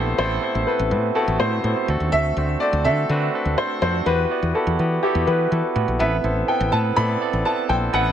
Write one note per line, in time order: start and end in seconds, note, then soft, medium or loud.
0.00 0.13 A#1 medium
0.00 0.18 A3 loud
0.00 0.18 B3 medium
0.00 0.19 C4 medium
0.00 0.19 E4 medium
0.00 1.91 G4 loud
0.00 0.19 A4 medium
0.00 0.17 C5 medium
0.18 0.37 A1 loud
0.18 0.35 A3 loud
0.18 0.35 B3 medium
0.18 0.35 C4 medium
0.18 0.35 E4 medium
0.18 0.36 A4 loud
0.18 0.69 C5 loud
0.43 0.59 A3 medium
0.43 0.59 B3 medium
0.43 0.60 C4 medium
0.43 0.60 E4 medium
0.43 0.60 A4 medium
0.55 0.64 A1 loud
0.67 0.83 A3 medium
0.67 0.84 B3 medium
0.67 0.84 C4 medium
0.67 0.84 E4 medium
0.67 0.84 A4 medium
0.67 1.12 B4 medium
0.79 0.93 A1 loud
0.91 1.10 A2 loud
0.91 1.07 A3 medium
0.91 1.08 B3 medium
0.91 1.08 C4 medium
0.91 1.08 E4 medium
0.91 1.08 B4 medium
1.15 1.32 A3 loud
1.15 1.32 B3 medium
1.15 1.32 C4 medium
1.15 1.32 E4 medium
1.15 1.32 F#4 loud
1.15 1.41 A4 medium
1.28 1.37 A1 loud
1.39 1.58 A2 loud
1.39 1.56 A3 medium
1.39 1.56 B3 medium
1.39 1.56 C4 medium
1.39 1.57 E4 medium
1.39 1.85 C5 medium
1.39 1.56 C5 medium
1.64 1.73 A2 loud
1.64 1.81 A3 medium
1.64 1.81 B3 medium
1.64 1.81 C4 medium
1.64 1.81 E4 medium
1.64 1.81 A4 medium
1.88 1.97 D2 loud
1.88 2.27 A3 medium
1.88 2.27 C4 medium
1.88 2.27 D4 medium
1.88 2.28 F#4 medium
1.88 2.28 A4 medium
2.00 2.10 D#2 medium
2.12 2.31 D2 loud
2.12 2.62 E5 loud
2.37 2.55 D2 loud
2.37 2.53 A3 medium
2.37 2.53 C4 medium
2.37 2.54 D4 medium
2.37 2.54 F#4 medium
2.37 2.54 C5 medium
2.60 2.78 A3 medium
2.60 2.78 C4 medium
2.60 2.78 D4 medium
2.60 2.78 F#4 medium
2.60 2.78 C5 medium
2.60 2.86 D5 loud
2.73 2.87 D2 loud
2.85 3.03 D3 loud
2.85 3.01 A3 medium
2.85 3.02 C4 medium
2.85 3.02 D4 medium
2.85 3.02 F#4 medium
2.85 3.02 A4 medium
2.85 3.60 E5 loud
3.09 3.28 D3 loud
3.09 3.26 A3 loud
3.09 3.26 C4 medium
3.09 3.26 D4 medium
3.09 3.26 F#4 medium
3.09 3.26 B4 loud
3.34 3.50 A3 medium
3.34 3.50 C4 medium
3.34 3.50 D4 medium
3.34 3.50 F#4 medium
3.34 3.51 A4 medium
3.45 3.55 D2 medium
3.58 3.74 A3 medium
3.58 3.74 C4 medium
3.58 3.74 D4 medium
3.58 3.74 F#4 medium
3.58 3.75 A4 medium
3.58 3.80 C5 loud
3.82 4.00 F2 loud
3.82 3.98 A3 medium
3.82 3.98 C4 medium
3.82 3.99 D4 medium
3.82 3.99 F#4 medium
3.82 3.99 A4 medium
3.82 4.07 C5 medium
4.06 4.24 E2 loud
4.06 4.23 B3 medium
4.06 4.23 E4 medium
4.06 4.23 F#4 medium
4.06 4.23 G4 medium
4.06 4.51 B4 loud
4.06 4.23 B4 loud
4.31 4.47 B3 medium
4.31 4.47 E4 medium
4.31 4.47 F#4 medium
4.31 4.47 G4 medium
4.31 4.47 D5 medium
4.43 4.52 E2 medium
4.54 4.71 B3 medium
4.54 4.71 E4 medium
4.54 4.71 F#4 medium
4.54 4.71 G4 medium
4.54 5.05 A4 medium
4.54 4.71 B4 medium
4.67 4.76 E2 loud
4.79 4.97 E3 loud
4.79 4.95 B3 medium
4.79 4.95 E4 medium
4.79 4.96 F#4 medium
4.79 4.96 G4 medium
4.79 4.96 B4 medium
5.03 5.19 B3 loud
5.03 5.20 E4 medium
5.03 5.20 F#4 medium
5.03 5.28 G4 medium
5.03 5.20 G4 medium
5.03 5.20 A4 loud
5.15 5.24 E2 loud
5.27 5.45 E3 loud
5.27 5.43 B3 medium
5.27 5.44 E4 medium
5.27 5.44 F#4 medium
5.27 5.44 G4 medium
5.27 5.72 B4 medium
5.27 5.44 B4 medium
5.51 5.61 E3 loud
5.51 5.68 B3 medium
5.51 5.68 E4 medium
5.51 5.68 F#4 medium
5.51 5.68 G4 medium
5.51 5.68 A4 medium
5.75 5.85 A2 loud
5.75 5.92 B3 medium
5.75 5.92 E4 medium
5.75 5.92 F#4 medium
5.75 5.92 G4 medium
5.75 5.92 B4 medium
5.88 5.97 A#1 medium
5.99 6.18 A1 loud
5.99 6.16 B3 loud
5.99 6.16 C4 medium
5.99 6.16 E4 medium
5.99 6.16 A4 medium
5.99 6.16 B4 loud
5.99 6.45 E5 medium
6.24 6.42 A1 loud
6.24 6.40 B3 medium
6.24 6.40 C4 medium
6.24 6.40 E4 medium
6.24 6.41 A4 medium
6.24 6.41 C5 medium
6.48 6.64 B3 medium
6.48 6.64 C4 medium
6.48 6.65 E4 medium
6.48 6.65 A4 medium
6.48 6.65 B4 medium
6.48 6.71 G5 medium
6.60 6.70 A1 loud
6.72 6.91 A2 loud
6.72 6.89 B3 medium
6.72 6.89 C4 medium
6.72 6.89 E4 medium
6.72 6.89 A4 medium
6.72 6.89 B4 medium
6.72 6.78 A5 loud
6.96 7.15 A2 loud
6.96 7.12 B3 loud
6.96 7.13 C4 medium
6.96 7.13 E4 medium
6.96 7.13 A4 medium
6.96 7.13 D5 loud
6.96 7.42 B5 loud
7.21 7.37 B3 medium
7.21 7.37 C4 medium
7.21 7.37 E4 medium
7.21 7.37 A4 medium
7.21 7.38 D5 medium
7.33 7.42 A1 medium
7.45 7.61 B3 medium
7.45 7.61 C4 medium
7.45 7.62 E4 medium
7.45 7.62 A4 medium
7.45 7.62 B4 medium
7.45 7.70 A5 loud
7.69 7.88 A#1 medium
7.69 7.85 B3 medium
7.69 7.85 C4 medium
7.69 7.86 E4 medium
7.69 7.86 A4 medium
7.69 7.86 C5 medium
7.69 7.75 G5 loud
7.93 8.12 A1 loud
7.93 8.09 B3 loud
7.93 8.09 C4 medium
7.93 8.10 E4 medium
7.93 8.10 A4 medium
7.93 8.10 B4 loud
7.93 8.12 F#5 loud